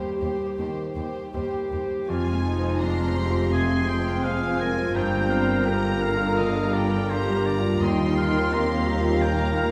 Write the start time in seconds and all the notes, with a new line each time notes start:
Already playing: D#2 D#3 G3 G4 C5 D#5
0.21 D#2 G4 C5
0.58 D#2 D#3 G4 C5
0.96 D#2 G4 C5
1.33 D#2 G3 G4 C5
1.71 D#2 G4 C5
2.08 F1 F2 F3 F4 G#5
2.27 G#3
2.34 G#3
2.44 D#4 F4
2.59 C5
2.80 G#3 D4 A#5 C6
2.99 F5
3.07 C5
3.17 C4 G4 C6
3.30 F4
3.52 C3 C4 G#4 G#5 C6
3.77 G#3
3.87 G5 C6
4.00 C5
4.05 F5
4.23 G#3 C5 F5 G#5
4.41 F4
4.48 C5
4.59 G#3 A#4 G#5
4.72 F4
4.77 F4
4.93 G1 G2 G3 A#3 C5 G5 A#5
5.13 D3
5.20 G3
5.29 G3 C4 F5
5.43 A#4
5.48 F4
5.65 D3 G4 A#4 G5 A#5
5.84 G4
5.91 A#4
6.02 F5
6.16 F4
6.20 A#5
6.37 D3 D#5 F5
6.56 A#5
6.63 G3
6.74 D5 F5 G5
6.87 A#4
6.92 G4
7.10 F4 G4 C5 A#5
7.29 G3
7.36 A#4
7.46 D3 D5 A#5
7.60 F4
7.64 G3
7.81 D#2 D#3 D#4 F4 D#5 G5 C6
8.00 G3
8.07 G3
8.17 D#4 F5
8.31 A#4
8.36 A#4
8.52 C4 G4 F5 A#5
8.78 A#4
8.87 G4 A#5
9.00 F4 G5
9.21 A#2 A#3 A#4 G5 A#5
9.39 G5
9.46 G3
9.56 A#3 F5 A#5